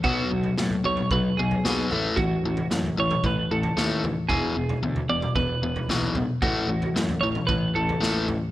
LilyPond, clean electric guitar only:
\new Staff \with { instrumentName = "Clean electric guitar" } { \time 4/4 \key a \major \tempo 4 = 113 fis'4 r8 cis''8 b'8 gis'4 r8 | fis'4 r8 cis''8 b'8 a'4 r8 | gis'4 r8 d''8 b'4. r8 | fis'4 r8 cis''8 b'8 a'4 r8 | }